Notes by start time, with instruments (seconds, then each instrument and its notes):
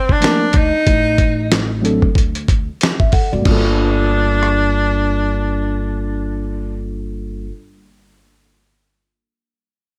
Already playing: tenor saxophone C4
0.09 tenor saxophone D4, kick
0.20 tine electric piano F3 A3 A#3 D4 A#4, snare, closed hi-hat
0.53 upright bass D2, tenor saxophone D#4, kick, closed hi-hat
0.87 upright bass A1, kick, closed hi-hat
1.18 kick, closed hi-hat
1.52 snare, closed hi-hat
1.82 tine electric piano F#3 A3 C4 D4, closed hi-hat
1.86 tine electric piano A4
2.02 kick
2.15 upright bass D2, kick, closed hi-hat
2.35 closed hi-hat
2.48 kick, closed hi-hat
2.81 snare, closed hi-hat
3.00 tine electric piano E5, kick
3.12 tine electric piano A4 F#5, kick, open hi-hat
3.32 upright bass G#1, tine electric piano F#4 D5
3.39 tine electric piano G3 A#3
3.45 upright bass G1, tine electric piano D4 F4, tenor saxophone D4, kick, crash
3.52 tine electric piano A4
4.43 cross-stick